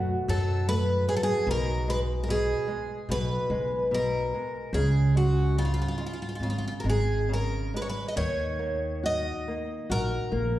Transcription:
0.00 0.14 F#2 medium
0.00 1.43 B2 medium
0.00 0.27 A3 medium
0.00 0.24 F#4 medium
0.28 1.06 F#2 loud
0.28 0.67 F#3 medium
0.28 0.68 A4 medium
0.68 1.06 A3 medium
0.68 1.05 B4 loud
1.08 1.47 F#3 medium
1.08 1.15 G#4 medium
1.16 1.22 A4 medium
1.23 1.50 G#4 medium
1.47 2.52 B1 loud
1.47 2.27 B2 medium
1.51 1.89 A#4 medium
1.88 2.27 G#3 medium
1.88 1.99 B4 medium
2.24 2.29 A#4 medium
2.28 2.67 B2 medium
2.28 3.11 G#4 medium
2.68 3.08 G#3 medium
3.09 3.36 B1 medium
3.09 3.49 B2 medium
3.09 3.94 B4 loud
3.50 4.31 B1 medium
3.50 3.91 G#3 medium
3.91 4.32 B2 medium
3.91 4.72 A#4 medium
4.34 4.73 G#3 medium
4.73 5.82 C#2 medium
4.73 5.57 C#3 medium
4.73 5.17 G#4 medium
5.15 5.56 G#3 soft
5.15 5.58 F#4 medium
5.58 5.98 C#3 medium
5.58 5.64 F4 medium
5.65 5.72 F4 medium
5.74 5.80 F4 medium
5.82 5.87 F4 medium
5.88 5.95 F4 medium
5.98 6.41 G#3 soft
5.98 6.04 F4 soft
6.06 6.12 F4 medium
6.13 6.19 F4 soft
6.22 6.27 F4 medium
6.29 6.34 F4 soft
6.35 6.41 F4 medium
6.40 6.68 G#1 medium
6.40 6.83 C#3 medium
6.40 6.49 F4 soft
6.50 6.56 F4 medium
6.58 6.64 F4 medium
6.68 6.73 F4 medium
6.80 6.86 A#4 medium
6.84 7.70 G#1 medium
6.84 7.28 G#3 soft
6.90 7.32 G#4 medium
7.29 7.72 C#3 soft
7.34 7.76 A#4 medium
7.74 8.16 G#3 soft
7.74 7.81 B4 medium
7.82 7.88 C#5 medium
7.90 8.08 B4 medium
8.08 8.16 D#5 medium
8.16 9.30 D#2 medium
8.16 10.59 D#3 medium
8.16 9.05 C#5 medium
8.59 9.02 A#3 medium
9.03 9.46 F#4 medium
9.03 9.94 D#5 medium
9.48 9.89 A#3 soft
9.90 10.17 A#1 medium
9.90 10.30 F#4 medium
9.90 10.59 A#4 loud
10.32 10.59 A#1 medium
10.32 10.59 A#3 medium

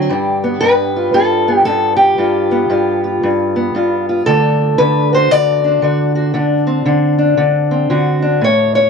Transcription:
0.00 0.10 F#3 medium
0.00 0.11 C4 soft
0.00 0.96 D4 soft
0.09 0.62 G2 medium
0.09 2.16 G3 medium
0.09 0.60 G4 soft
0.44 1.47 B3 soft
0.61 1.14 G2 medium
0.61 1.14 B4 loud
0.96 2.17 F4 soft
1.14 1.65 G2 medium
1.14 1.64 A4 medium
1.48 2.17 B3 soft
1.65 2.16 G2 medium
1.65 1.96 A4 medium
1.97 4.25 G4 medium
2.18 2.68 G2 medium
2.18 2.69 F4 soft
2.51 3.55 B3 soft
2.70 3.22 G2 medium
2.70 3.03 F4 soft
3.04 3.75 F4 soft
3.23 3.73 G2 medium
3.56 4.25 B3 soft
3.75 4.24 G2 medium
3.75 4.08 F4 soft
4.09 4.25 F4 soft
4.26 4.79 D3 medium
4.26 7.78 A3 soft
4.26 5.63 D4 soft
4.26 5.11 A4 loud
4.78 5.31 D3 medium
4.78 5.13 B4 loud
5.13 5.82 F#4 soft
5.13 5.31 C5 loud
5.31 5.81 D3 medium
5.31 7.90 D5 loud
5.64 6.33 D4 soft
5.82 6.32 D3 medium
5.82 6.14 F#4 soft
6.15 6.32 F#4 soft
6.34 6.84 D3 medium
6.34 6.85 D4 soft
6.67 7.70 C4 soft
6.86 7.36 D3 medium
6.86 7.17 D4 soft
7.19 8.21 D4 soft
7.37 7.89 D3 medium
7.71 8.40 C4 soft
7.90 8.39 D3 medium
7.90 8.42 F#4 soft
8.22 8.40 D4 soft
8.41 8.90 A2 medium
8.41 8.74 C#5 loud
8.75 8.90 C#5 medium

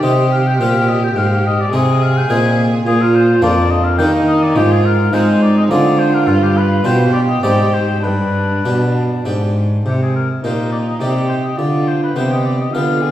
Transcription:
0.00 0.56 C3 soft
0.00 0.60 C3 medium
0.00 0.44 C4 soft
0.00 1.69 G4 medium
0.00 0.44 G4 soft
0.00 0.31 D#5 medium
0.32 0.48 F5 medium
0.47 0.61 G5 medium
0.59 1.15 A#2 medium
0.59 1.13 A#2 medium
0.59 1.01 C4 soft
0.59 1.02 G4 medium
0.59 0.90 F5 medium
0.88 1.02 D#5 medium
1.04 1.19 G5 medium
1.16 1.71 G#2 medium
1.16 1.69 G#2 medium
1.16 1.45 F5 medium
1.46 1.62 D#5 medium
1.61 1.74 D5 medium
1.72 2.29 C3 medium
1.72 2.26 C3 medium
1.72 2.14 C4 soft
1.72 2.14 D#4 soft
1.72 2.84 G#4 medium
1.72 2.14 G#4 medium
1.72 2.04 D#5 medium
2.03 2.19 F5 medium
2.17 2.29 G5 medium
2.30 2.82 A#2 medium
2.30 2.85 A#2 medium
2.30 2.71 C4 soft
2.30 2.71 D#4 soft
2.30 2.71 G#4 medium
2.30 2.66 G#5 loud
2.86 3.39 A#2 medium
2.86 3.44 F4 medium
2.86 3.03 G#4 loud
3.01 3.16 A#4 medium
3.15 3.43 C5 medium
3.42 3.95 F2 medium
3.42 4.01 F2 medium
3.42 3.83 A#3 soft
3.42 3.83 D4 soft
3.42 3.98 D4 medium
3.42 3.83 F4 medium
3.42 3.72 D5 medium
3.71 3.86 D#5 medium
3.84 3.98 F5 medium
3.98 4.52 D#3 medium
3.98 4.58 D#3 medium
3.98 4.52 A#3 medium
3.98 4.53 D4 medium
3.98 4.58 D#4 medium
3.98 4.53 G4 medium
3.98 4.11 G5 loud
4.27 4.45 D#5 medium
4.43 4.58 D5 medium
4.56 5.09 G#2 medium
4.56 5.13 G#2 medium
4.56 5.12 G#3 medium
4.56 5.13 F4 medium
4.56 4.73 G4 loud
4.71 4.87 G#4 medium
4.86 5.15 A#4 medium
5.13 5.66 G#3 medium
5.13 5.72 G#3 medium
5.13 5.54 C4 soft
5.13 5.72 D#4 medium
5.13 5.55 D#4 soft
5.13 5.55 G#4 medium
5.13 5.43 C5 medium
5.42 5.56 D5 medium
5.57 5.64 D#5 medium
5.70 6.28 D3 medium
5.70 6.24 D3 medium
5.70 6.24 C4 soft
5.70 6.87 F4 medium
5.70 6.24 F4 soft
5.70 6.24 G#4 soft
5.70 6.00 D5 medium
5.99 6.16 C5 medium
6.14 6.29 A#4 medium
6.27 6.85 G2 medium
6.27 6.81 G2 medium
6.27 6.45 F4 medium
6.43 6.58 G4 medium
6.57 6.87 B4 medium
6.84 7.39 B2 soft
6.84 7.43 B2 medium
6.84 7.27 D4 soft
6.84 7.27 F4 soft
6.84 7.27 G4 soft
6.84 8.02 G4 medium
6.84 7.13 C5 medium
7.13 7.20 D5 medium
7.29 7.42 D#5 medium
7.43 8.00 G#2 medium
7.43 8.06 G#2 medium
7.43 8.02 G#3 medium
7.43 8.00 C4 soft
7.43 8.00 D#4 soft
7.43 8.00 C5 soft
7.43 7.75 D5 medium
7.73 8.05 C5 medium
8.02 8.62 G2 soft
8.02 8.66 G2 medium
8.02 9.52 D4 medium
8.02 9.25 B4 medium
8.65 9.22 B2 soft
8.65 9.25 B2 medium
8.65 9.09 D4 soft
8.65 9.09 G4 soft
9.25 9.81 G#2 medium
9.25 9.85 G#2 medium
9.25 9.69 D4 soft
9.25 9.69 G4 soft
9.86 10.39 C3 soft
9.86 9.99 G4 medium
10.02 10.15 G#4 medium
10.15 10.28 A#4 medium
10.42 11.00 A#2 soft
10.42 10.97 A#2 soft
10.42 11.01 D#4 soft
10.42 10.85 D#4 soft
10.42 10.86 G4 soft
10.42 10.71 C5 medium
10.72 10.78 D5 medium
10.88 10.94 D#5 medium
10.99 11.54 C3 soft
10.99 11.58 C3 soft
10.99 11.42 D#4 soft
10.99 11.59 G4 medium
10.99 11.43 G4 soft
10.99 11.28 D5 medium
11.29 11.35 C5 medium
11.44 11.59 D#5 medium
11.57 12.15 D3 medium
11.57 12.12 D3 soft
11.57 12.15 F4 medium
11.57 11.89 D5 medium
11.88 12.02 C5 medium
12.03 12.18 B4 medium
12.16 12.70 C3 soft
12.16 12.73 C3 soft
12.16 12.57 B3 soft
12.16 12.58 G4 soft
12.16 12.72 G4 soft
12.16 12.33 C5 medium
12.32 12.48 D#5 medium
12.46 12.60 D5 medium
12.60 12.75 D#5 medium
12.73 13.11 D3 medium
12.73 13.11 D3 soft
12.73 13.11 B3 soft
12.73 13.03 F4 medium
12.73 13.11 G4 soft
12.73 13.11 F5 medium
13.01 13.11 G#4 soft

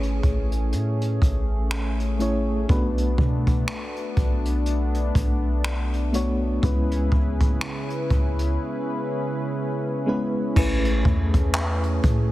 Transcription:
0.00 0.21 G#1 loud
0.00 2.19 A3 medium
0.00 6.59 A3 medium
0.00 2.20 C#4 medium
0.00 2.65 C#4 medium
0.00 2.20 E4 medium
0.00 2.21 G#4 medium
0.00 2.65 G#4 medium
0.00 2.71 B4 medium
0.00 2.22 C#5 medium
0.00 closed hi-hat soft
0.23 0.75 A1 loud
0.23 kick medium
0.23 closed hi-hat medium
0.52 closed hi-hat medium
0.72 1.20 A2 loud
0.72 closed hi-hat medium
1.01 closed hi-hat soft
1.22 2.65 A1 loud
1.22 kick medium
1.22 closed hi-hat medium
1.71 finger snap loud
1.71 closed hi-hat medium
2.00 closed hi-hat soft
2.19 2.61 A3 medium
2.19 2.61 C#4 medium
2.19 2.61 E4 medium
2.19 2.62 G#4 medium
2.19 2.62 C#5 medium
2.19 closed hi-hat medium
2.68 3.17 B1 loud
2.68 4.28 A3 medium
2.68 4.29 B3 medium
2.68 6.59 B3 medium
2.68 4.29 D4 medium
2.68 6.59 D4 medium
2.68 4.29 F#4 medium
2.68 4.30 B4 medium
2.68 kick loud
2.68 closed hi-hat medium
2.98 closed hi-hat soft
3.18 3.66 B2 loud
3.18 kick medium
3.47 kick medium
3.47 closed hi-hat soft
3.68 finger snap loud
3.68 closed hi-hat medium
3.96 closed hi-hat soft
4.17 5.11 B1 loud
4.17 kick medium
4.17 closed hi-hat medium
4.45 closed hi-hat medium
4.66 closed hi-hat medium
4.94 closed hi-hat soft
5.15 6.59 B1 loud
5.15 kick medium
5.15 closed hi-hat medium
5.64 finger snap loud
5.64 closed hi-hat medium
5.93 closed hi-hat soft
6.13 6.54 A3 medium
6.13 6.54 B3 medium
6.13 6.55 D4 medium
6.13 6.55 F#4 medium
6.13 6.55 C#5 medium
6.13 closed hi-hat medium
6.62 7.10 C#2 loud
6.62 10.53 C#3 medium
6.62 8.22 G#3 medium
6.62 8.22 B3 medium
6.62 8.22 C#4 medium
6.62 10.53 C#4 medium
6.62 10.52 E4 medium
6.62 8.23 E4 medium
6.62 10.53 G#4 medium
6.62 10.53 B4 medium
6.62 8.23 B4 medium
6.62 kick loud
6.62 closed hi-hat medium
6.91 closed hi-hat soft
7.12 7.59 C#2 loud
7.12 kick medium
7.41 kick medium
7.41 closed hi-hat soft
7.61 finger snap loud
7.61 closed hi-hat medium
7.90 closed hi-hat soft
8.10 8.58 C#2 loud
8.10 kick medium
8.10 closed hi-hat medium
8.39 closed hi-hat soft
10.06 10.48 G#3 medium
10.06 10.48 B3 medium
10.06 10.48 C#4 medium
10.06 10.49 E4 medium
10.06 10.49 B4 medium
10.56 11.04 A1 loud
10.56 12.15 A3 medium
10.56 12.32 A3 medium
10.56 12.16 C#4 medium
10.56 12.32 C#4 medium
10.56 12.16 E4 medium
10.56 12.32 G#4 medium
10.56 12.16 G#4 medium
10.56 12.17 B4 loud
10.56 kick loud
10.56 crash loud
10.85 closed hi-hat soft
11.05 12.00 E2 loud
11.05 kick medium
11.34 kick medium
11.34 closed hi-hat medium
11.55 clap loud
11.55 closed hi-hat medium
11.83 closed hi-hat soft
12.03 12.32 A2 loud
12.03 kick medium
12.03 closed hi-hat medium

